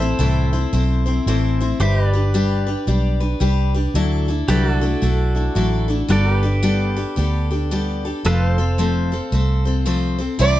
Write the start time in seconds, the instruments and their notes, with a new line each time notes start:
Already playing: fingered electric bass A1, pedal steel guitar A4 C5 E5
0.00 steel-string acoustic guitar A3 C4 E4 C5
0.19 fingered electric bass C2, steel-string acoustic guitar A2 E3 A3 C4 E4 C5
0.53 steel-string acoustic guitar A3 C4 E4 C5
0.73 fingered electric bass B1, steel-string acoustic guitar A3 C4 E4 C5
1.06 steel-string acoustic guitar A3 C4 E4 C5
1.26 fingered electric bass A1, steel-string acoustic guitar A2 E3 A3 C4 E4 C5
1.60 steel-string acoustic guitar A3 C4 E4 C5
1.80 fingered electric bass G1, steel-string acoustic guitar G3 D4 G4 B4, pedal steel guitar G4 C5 E5
2.01 pedal steel guitar B4
2.08 pedal steel guitar D5
2.13 steel-string acoustic guitar D4 G4 B4
2.34 steel-string acoustic guitar G3 D4 G4 B4
2.67 steel-string acoustic guitar D4 G4 B4
2.87 fingered electric bass B1, steel-string acoustic guitar G3 D4 G4 B4
3.20 steel-string acoustic guitar D4 G4 B4
3.40 fingered electric bass C2, steel-string acoustic guitar G3 D4 G4 B4
3.74 steel-string acoustic guitar D4 G4 B4
3.94 fingered electric bass D2, steel-string acoustic guitar D3 F#3 A3 D4 E4 A4
4.28 steel-string acoustic guitar A3 D4 E4 A4
4.48 fingered electric bass C2, steel-string acoustic guitar D3 F#3 A3 D4 E4 A4, pedal steel guitar G4 B4 D5
4.69 pedal steel guitar F#4
4.75 pedal steel guitar A4
4.81 steel-string acoustic guitar A3 D4 E4 A4
5.02 fingered electric bass B1, steel-string acoustic guitar A3 D4 E4 A4
5.35 steel-string acoustic guitar A3 D4 E4 A4
5.55 fingered electric bass A1, steel-string acoustic guitar D3 F#3 A3 D4 E4 A4
5.88 steel-string acoustic guitar A3 D4 E4 A4
6.08 fingered electric bass G1, steel-string acoustic guitar G3 B3 D4 G4 A4, pedal steel guitar F#4 A4 D5
6.30 pedal steel guitar G4
6.36 pedal steel guitar B4
6.43 steel-string acoustic guitar D4 G4 A4
6.63 steel-string acoustic guitar G3 B3 D4 G4 A4
6.97 steel-string acoustic guitar D4 G4 A4
7.16 fingered electric bass D2, steel-string acoustic guitar B3 D4 G4 A4
7.51 steel-string acoustic guitar D4 G4 A4
7.71 steel-string acoustic guitar G3 B3 D4 G4 A4
8.05 steel-string acoustic guitar D4 G4 A4
8.25 fingered electric bass F1, steel-string acoustic guitar F3 A3 C4 A4 C5, pedal steel guitar A4 B4 F5
8.47 pedal steel guitar C5
8.58 steel-string acoustic guitar C4 A4 C5
8.78 steel-string acoustic guitar F3 A3 C4 A4 C5
9.12 steel-string acoustic guitar C4 A4 C5
9.32 fingered electric bass C2, steel-string acoustic guitar A3 C4 A4 C5
9.65 steel-string acoustic guitar C4 A4 C5
9.86 steel-string acoustic guitar F3 A3 C4 A4 C5
10.18 steel-string acoustic guitar C4 A4 C5
10.39 fingered electric bass C2, steel-string acoustic guitar C3 E3 G3 C4 E4 C5, fiddle D5